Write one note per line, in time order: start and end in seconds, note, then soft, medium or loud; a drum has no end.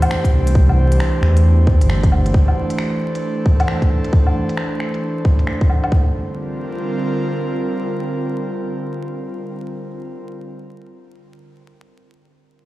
0.00 5.92 E3 medium
0.00 5.92 A3 medium
0.00 5.92 D4 medium
0.00 2.86 G4 medium
0.00 5.91 C5 medium
0.00 closed hi-hat medium
0.00 low woodblock medium
0.11 finger snap loud
0.24 kick medium
0.24 closed hi-hat soft
0.33 0.99 C2 medium
0.47 closed hi-hat medium
0.55 kick loud
0.69 low woodblock soft
0.92 closed hi-hat medium
1.00 finger snap loud
1.22 1.83 E2 medium
1.22 finger snap medium
1.37 closed hi-hat medium
1.67 kick loud
1.81 2.33 G1 loud
1.81 closed hi-hat medium
1.90 finger snap loud
2.03 kick loud
2.03 closed hi-hat soft
2.12 low woodblock soft
2.26 closed hi-hat medium
2.34 kick loud
2.48 low woodblock soft
2.70 5.92 A4 medium
2.70 closed hi-hat medium
2.79 finger snap loud
3.15 closed hi-hat medium
3.46 kick loud
3.60 closed hi-hat medium
3.60 low woodblock medium
3.68 finger snap loud
3.82 kick medium
3.82 closed hi-hat soft
4.05 closed hi-hat medium
4.13 kick loud
4.27 low woodblock soft
4.49 closed hi-hat soft
4.57 finger snap loud
4.80 finger snap medium
4.94 closed hi-hat soft
5.25 kick loud
5.39 closed hi-hat soft
5.47 finger snap loud
5.61 kick medium
5.61 closed hi-hat soft
5.70 low woodblock soft
5.84 closed hi-hat soft
5.84 low woodblock medium
5.92 10.26 D3 medium
5.92 kick loud
6.00 10.26 G3 medium
6.07 10.26 C4 medium
6.13 10.27 F4 medium
6.20 10.26 A#4 medium